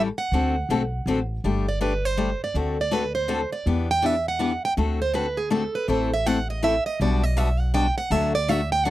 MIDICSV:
0, 0, Header, 1, 4, 480
1, 0, Start_track
1, 0, Key_signature, 1, "major"
1, 0, Tempo, 370599
1, 424, Time_signature, 3, 2, 24, 8
1, 11529, End_track
2, 0, Start_track
2, 0, Title_t, "Steel-string acoustic guitar"
2, 0, Program_c, 0, 25
2, 234, Note_on_c, 0, 78, 89
2, 1625, Note_off_c, 0, 78, 0
2, 2182, Note_on_c, 0, 74, 72
2, 2346, Note_off_c, 0, 74, 0
2, 2356, Note_on_c, 0, 71, 61
2, 2659, Note_off_c, 0, 71, 0
2, 2659, Note_on_c, 0, 72, 70
2, 3130, Note_off_c, 0, 72, 0
2, 3158, Note_on_c, 0, 74, 82
2, 3314, Note_off_c, 0, 74, 0
2, 3639, Note_on_c, 0, 74, 77
2, 3795, Note_off_c, 0, 74, 0
2, 3795, Note_on_c, 0, 71, 65
2, 4072, Note_off_c, 0, 71, 0
2, 4077, Note_on_c, 0, 72, 80
2, 4525, Note_off_c, 0, 72, 0
2, 4565, Note_on_c, 0, 74, 79
2, 4737, Note_off_c, 0, 74, 0
2, 5063, Note_on_c, 0, 79, 93
2, 5257, Note_off_c, 0, 79, 0
2, 5257, Note_on_c, 0, 76, 67
2, 5530, Note_off_c, 0, 76, 0
2, 5548, Note_on_c, 0, 78, 82
2, 5982, Note_off_c, 0, 78, 0
2, 6022, Note_on_c, 0, 79, 86
2, 6124, Note_off_c, 0, 79, 0
2, 6498, Note_on_c, 0, 72, 83
2, 6664, Note_off_c, 0, 72, 0
2, 6670, Note_on_c, 0, 71, 60
2, 6957, Note_off_c, 0, 71, 0
2, 6960, Note_on_c, 0, 68, 69
2, 7135, Note_off_c, 0, 68, 0
2, 7144, Note_on_c, 0, 69, 76
2, 7435, Note_off_c, 0, 69, 0
2, 7449, Note_on_c, 0, 71, 80
2, 7620, Note_off_c, 0, 71, 0
2, 7946, Note_on_c, 0, 76, 91
2, 8116, Note_off_c, 0, 76, 0
2, 8116, Note_on_c, 0, 78, 84
2, 8401, Note_off_c, 0, 78, 0
2, 8420, Note_on_c, 0, 75, 81
2, 8586, Note_off_c, 0, 75, 0
2, 8601, Note_on_c, 0, 76, 90
2, 8881, Note_off_c, 0, 76, 0
2, 8886, Note_on_c, 0, 75, 88
2, 9059, Note_off_c, 0, 75, 0
2, 9092, Note_on_c, 0, 74, 74
2, 9371, Note_off_c, 0, 74, 0
2, 9371, Note_on_c, 0, 75, 87
2, 9556, Note_off_c, 0, 75, 0
2, 9556, Note_on_c, 0, 76, 81
2, 9841, Note_off_c, 0, 76, 0
2, 9841, Note_on_c, 0, 78, 102
2, 10018, Note_off_c, 0, 78, 0
2, 10031, Note_on_c, 0, 79, 94
2, 10320, Note_off_c, 0, 79, 0
2, 10331, Note_on_c, 0, 78, 93
2, 10514, Note_off_c, 0, 78, 0
2, 10514, Note_on_c, 0, 76, 84
2, 10802, Note_off_c, 0, 76, 0
2, 10814, Note_on_c, 0, 74, 97
2, 10999, Note_off_c, 0, 74, 0
2, 10999, Note_on_c, 0, 76, 89
2, 11285, Note_off_c, 0, 76, 0
2, 11295, Note_on_c, 0, 79, 101
2, 11461, Note_off_c, 0, 79, 0
2, 11461, Note_on_c, 0, 78, 86
2, 11529, Note_off_c, 0, 78, 0
2, 11529, End_track
3, 0, Start_track
3, 0, Title_t, "Steel-string acoustic guitar"
3, 0, Program_c, 1, 25
3, 428, Note_on_c, 1, 50, 56
3, 432, Note_on_c, 1, 57, 58
3, 437, Note_on_c, 1, 60, 64
3, 439, Note_on_c, 1, 66, 70
3, 442, Note_on_c, 1, 69, 58
3, 700, Note_off_c, 1, 50, 0
3, 701, Note_off_c, 1, 57, 0
3, 704, Note_off_c, 1, 60, 0
3, 705, Note_off_c, 1, 66, 0
3, 706, Note_off_c, 1, 69, 0
3, 907, Note_on_c, 1, 50, 76
3, 912, Note_on_c, 1, 60, 73
3, 914, Note_on_c, 1, 57, 81
3, 916, Note_on_c, 1, 66, 83
3, 918, Note_on_c, 1, 69, 88
3, 1050, Note_off_c, 1, 50, 0
3, 1052, Note_off_c, 1, 60, 0
3, 1054, Note_off_c, 1, 57, 0
3, 1054, Note_off_c, 1, 66, 0
3, 1055, Note_off_c, 1, 69, 0
3, 1388, Note_on_c, 1, 50, 69
3, 1396, Note_on_c, 1, 60, 83
3, 1399, Note_on_c, 1, 57, 81
3, 1402, Note_on_c, 1, 66, 79
3, 1404, Note_on_c, 1, 69, 81
3, 1530, Note_off_c, 1, 50, 0
3, 1534, Note_off_c, 1, 60, 0
3, 1535, Note_off_c, 1, 57, 0
3, 1537, Note_off_c, 1, 66, 0
3, 1538, Note_off_c, 1, 69, 0
3, 1867, Note_on_c, 1, 55, 57
3, 1872, Note_on_c, 1, 57, 56
3, 1877, Note_on_c, 1, 62, 67
3, 1884, Note_on_c, 1, 67, 64
3, 2138, Note_off_c, 1, 55, 0
3, 2141, Note_off_c, 1, 57, 0
3, 2143, Note_off_c, 1, 62, 0
3, 2147, Note_off_c, 1, 67, 0
3, 2339, Note_on_c, 1, 55, 70
3, 2344, Note_on_c, 1, 57, 80
3, 2345, Note_on_c, 1, 62, 76
3, 2347, Note_on_c, 1, 67, 91
3, 2485, Note_off_c, 1, 55, 0
3, 2488, Note_off_c, 1, 57, 0
3, 2488, Note_off_c, 1, 62, 0
3, 2489, Note_off_c, 1, 67, 0
3, 2815, Note_on_c, 1, 55, 83
3, 2816, Note_on_c, 1, 57, 74
3, 2822, Note_on_c, 1, 62, 74
3, 2825, Note_on_c, 1, 67, 77
3, 2963, Note_off_c, 1, 55, 0
3, 2963, Note_off_c, 1, 57, 0
3, 2966, Note_off_c, 1, 62, 0
3, 2968, Note_off_c, 1, 67, 0
3, 3301, Note_on_c, 1, 50, 52
3, 3308, Note_on_c, 1, 57, 61
3, 3308, Note_on_c, 1, 60, 58
3, 3316, Note_on_c, 1, 69, 62
3, 3317, Note_on_c, 1, 66, 68
3, 3575, Note_off_c, 1, 50, 0
3, 3578, Note_off_c, 1, 57, 0
3, 3578, Note_off_c, 1, 60, 0
3, 3582, Note_off_c, 1, 69, 0
3, 3583, Note_off_c, 1, 66, 0
3, 3772, Note_on_c, 1, 50, 75
3, 3776, Note_on_c, 1, 57, 81
3, 3777, Note_on_c, 1, 60, 73
3, 3783, Note_on_c, 1, 66, 72
3, 3786, Note_on_c, 1, 69, 80
3, 3921, Note_off_c, 1, 50, 0
3, 3923, Note_off_c, 1, 57, 0
3, 3923, Note_off_c, 1, 60, 0
3, 3927, Note_off_c, 1, 66, 0
3, 3928, Note_off_c, 1, 69, 0
3, 4249, Note_on_c, 1, 50, 79
3, 4254, Note_on_c, 1, 57, 72
3, 4257, Note_on_c, 1, 66, 83
3, 4259, Note_on_c, 1, 60, 83
3, 4259, Note_on_c, 1, 69, 81
3, 4399, Note_off_c, 1, 50, 0
3, 4402, Note_off_c, 1, 57, 0
3, 4404, Note_off_c, 1, 60, 0
3, 4404, Note_off_c, 1, 66, 0
3, 4404, Note_off_c, 1, 69, 0
3, 4745, Note_on_c, 1, 52, 54
3, 4752, Note_on_c, 1, 59, 72
3, 4753, Note_on_c, 1, 62, 61
3, 4759, Note_on_c, 1, 67, 68
3, 5017, Note_off_c, 1, 52, 0
3, 5020, Note_off_c, 1, 59, 0
3, 5021, Note_off_c, 1, 62, 0
3, 5024, Note_off_c, 1, 67, 0
3, 5208, Note_on_c, 1, 52, 75
3, 5211, Note_on_c, 1, 59, 79
3, 5219, Note_on_c, 1, 62, 84
3, 5223, Note_on_c, 1, 67, 72
3, 5359, Note_off_c, 1, 52, 0
3, 5361, Note_off_c, 1, 59, 0
3, 5365, Note_off_c, 1, 62, 0
3, 5366, Note_off_c, 1, 67, 0
3, 5688, Note_on_c, 1, 52, 76
3, 5696, Note_on_c, 1, 62, 84
3, 5698, Note_on_c, 1, 59, 76
3, 5706, Note_on_c, 1, 67, 79
3, 5839, Note_off_c, 1, 52, 0
3, 5843, Note_off_c, 1, 62, 0
3, 5844, Note_off_c, 1, 59, 0
3, 5848, Note_off_c, 1, 67, 0
3, 6182, Note_on_c, 1, 50, 67
3, 6182, Note_on_c, 1, 57, 59
3, 6182, Note_on_c, 1, 60, 61
3, 6188, Note_on_c, 1, 66, 70
3, 6197, Note_on_c, 1, 69, 71
3, 6455, Note_off_c, 1, 57, 0
3, 6456, Note_off_c, 1, 50, 0
3, 6456, Note_off_c, 1, 60, 0
3, 6458, Note_off_c, 1, 66, 0
3, 6463, Note_off_c, 1, 69, 0
3, 6650, Note_on_c, 1, 57, 80
3, 6652, Note_on_c, 1, 50, 66
3, 6657, Note_on_c, 1, 60, 78
3, 6661, Note_on_c, 1, 66, 78
3, 6669, Note_on_c, 1, 69, 85
3, 6800, Note_off_c, 1, 57, 0
3, 6801, Note_off_c, 1, 50, 0
3, 6804, Note_off_c, 1, 60, 0
3, 6806, Note_off_c, 1, 66, 0
3, 6810, Note_off_c, 1, 69, 0
3, 7127, Note_on_c, 1, 50, 75
3, 7131, Note_on_c, 1, 57, 76
3, 7133, Note_on_c, 1, 60, 79
3, 7143, Note_on_c, 1, 66, 69
3, 7144, Note_on_c, 1, 69, 79
3, 7280, Note_off_c, 1, 50, 0
3, 7281, Note_off_c, 1, 57, 0
3, 7282, Note_off_c, 1, 60, 0
3, 7287, Note_off_c, 1, 66, 0
3, 7288, Note_off_c, 1, 69, 0
3, 7614, Note_on_c, 1, 52, 64
3, 7620, Note_on_c, 1, 57, 60
3, 7624, Note_on_c, 1, 60, 58
3, 7628, Note_on_c, 1, 64, 64
3, 7635, Note_on_c, 1, 69, 73
3, 7892, Note_off_c, 1, 52, 0
3, 7895, Note_off_c, 1, 57, 0
3, 7897, Note_off_c, 1, 60, 0
3, 7899, Note_off_c, 1, 64, 0
3, 7903, Note_off_c, 1, 69, 0
3, 8106, Note_on_c, 1, 52, 63
3, 8113, Note_on_c, 1, 57, 79
3, 8113, Note_on_c, 1, 64, 83
3, 8116, Note_on_c, 1, 60, 90
3, 8120, Note_on_c, 1, 69, 79
3, 8249, Note_off_c, 1, 52, 0
3, 8253, Note_off_c, 1, 57, 0
3, 8253, Note_off_c, 1, 64, 0
3, 8255, Note_off_c, 1, 60, 0
3, 8257, Note_off_c, 1, 69, 0
3, 8580, Note_on_c, 1, 52, 73
3, 8583, Note_on_c, 1, 57, 80
3, 8585, Note_on_c, 1, 60, 80
3, 8589, Note_on_c, 1, 64, 77
3, 8592, Note_on_c, 1, 69, 78
3, 8727, Note_off_c, 1, 52, 0
3, 8728, Note_off_c, 1, 57, 0
3, 8729, Note_off_c, 1, 60, 0
3, 8731, Note_off_c, 1, 64, 0
3, 8733, Note_off_c, 1, 69, 0
3, 9074, Note_on_c, 1, 47, 56
3, 9079, Note_on_c, 1, 59, 64
3, 9081, Note_on_c, 1, 55, 63
3, 9082, Note_on_c, 1, 62, 71
3, 9086, Note_on_c, 1, 66, 68
3, 9343, Note_off_c, 1, 47, 0
3, 9346, Note_off_c, 1, 59, 0
3, 9347, Note_off_c, 1, 55, 0
3, 9348, Note_off_c, 1, 62, 0
3, 9349, Note_off_c, 1, 66, 0
3, 9540, Note_on_c, 1, 55, 82
3, 9541, Note_on_c, 1, 47, 74
3, 9543, Note_on_c, 1, 59, 83
3, 9544, Note_on_c, 1, 62, 94
3, 9552, Note_on_c, 1, 66, 89
3, 9688, Note_off_c, 1, 47, 0
3, 9688, Note_off_c, 1, 55, 0
3, 9689, Note_off_c, 1, 59, 0
3, 9690, Note_off_c, 1, 62, 0
3, 9694, Note_off_c, 1, 66, 0
3, 10021, Note_on_c, 1, 47, 79
3, 10022, Note_on_c, 1, 55, 75
3, 10028, Note_on_c, 1, 59, 76
3, 10029, Note_on_c, 1, 66, 80
3, 10030, Note_on_c, 1, 62, 78
3, 10168, Note_off_c, 1, 47, 0
3, 10169, Note_off_c, 1, 55, 0
3, 10172, Note_off_c, 1, 59, 0
3, 10172, Note_off_c, 1, 66, 0
3, 10173, Note_off_c, 1, 62, 0
3, 10501, Note_on_c, 1, 50, 65
3, 10503, Note_on_c, 1, 54, 69
3, 10505, Note_on_c, 1, 62, 65
3, 10507, Note_on_c, 1, 57, 70
3, 10514, Note_on_c, 1, 66, 67
3, 10778, Note_off_c, 1, 50, 0
3, 10779, Note_off_c, 1, 54, 0
3, 10780, Note_off_c, 1, 62, 0
3, 10781, Note_off_c, 1, 57, 0
3, 10784, Note_off_c, 1, 66, 0
3, 10987, Note_on_c, 1, 50, 80
3, 10990, Note_on_c, 1, 54, 84
3, 10992, Note_on_c, 1, 57, 82
3, 10999, Note_on_c, 1, 62, 76
3, 11000, Note_on_c, 1, 66, 92
3, 11132, Note_off_c, 1, 50, 0
3, 11134, Note_off_c, 1, 54, 0
3, 11135, Note_off_c, 1, 57, 0
3, 11138, Note_off_c, 1, 62, 0
3, 11139, Note_off_c, 1, 66, 0
3, 11465, Note_on_c, 1, 50, 81
3, 11467, Note_on_c, 1, 54, 83
3, 11474, Note_on_c, 1, 57, 84
3, 11482, Note_on_c, 1, 62, 85
3, 11482, Note_on_c, 1, 66, 91
3, 11529, Note_off_c, 1, 50, 0
3, 11529, Note_off_c, 1, 54, 0
3, 11529, Note_off_c, 1, 57, 0
3, 11529, Note_off_c, 1, 62, 0
3, 11529, Note_off_c, 1, 66, 0
3, 11529, End_track
4, 0, Start_track
4, 0, Title_t, "Upright bass"
4, 0, Program_c, 2, 32
4, 407, Note_on_c, 2, 38, 75
4, 797, Note_off_c, 2, 38, 0
4, 891, Note_on_c, 2, 35, 73
4, 1303, Note_off_c, 2, 35, 0
4, 1368, Note_on_c, 2, 33, 82
4, 1782, Note_off_c, 2, 33, 0
4, 1863, Note_on_c, 2, 31, 73
4, 3013, Note_off_c, 2, 31, 0
4, 3293, Note_on_c, 2, 38, 77
4, 4448, Note_off_c, 2, 38, 0
4, 4739, Note_on_c, 2, 40, 78
4, 5892, Note_off_c, 2, 40, 0
4, 6178, Note_on_c, 2, 38, 76
4, 7332, Note_off_c, 2, 38, 0
4, 7620, Note_on_c, 2, 33, 79
4, 8774, Note_off_c, 2, 33, 0
4, 9063, Note_on_c, 2, 35, 84
4, 10217, Note_off_c, 2, 35, 0
4, 10496, Note_on_c, 2, 38, 90
4, 11529, Note_off_c, 2, 38, 0
4, 11529, End_track
0, 0, End_of_file